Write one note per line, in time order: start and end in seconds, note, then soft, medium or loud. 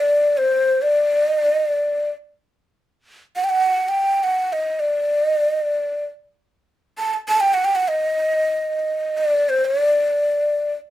0.00 0.39 D5 medium
0.38 0.83 C5 medium
0.82 1.28 D5 medium
1.28 1.39 D#5 medium
1.39 1.54 D5 medium
1.54 1.65 D#5 medium
1.65 2.10 D5 medium
3.36 3.46 F#5 medium
3.44 3.51 G5 medium
3.49 3.90 F#5 medium
3.89 4.25 G5 medium
4.23 4.54 F#5 medium
4.53 4.81 D#5 medium
4.80 5.25 D5 medium
5.25 5.37 D#5 medium
5.37 5.50 D5 medium
5.50 5.62 D#5 medium
5.62 6.06 D5 medium
6.99 7.14 A5 medium
7.14 7.15 A5 medium
7.29 7.42 A5 medium
7.40 7.55 G5 medium
7.54 7.66 F#5 medium
7.65 7.77 G5 medium
7.75 7.90 F#5 medium
7.88 9.19 D#5 medium
9.17 9.51 D5 medium
9.49 9.67 C5 medium
9.65 10.72 D5 medium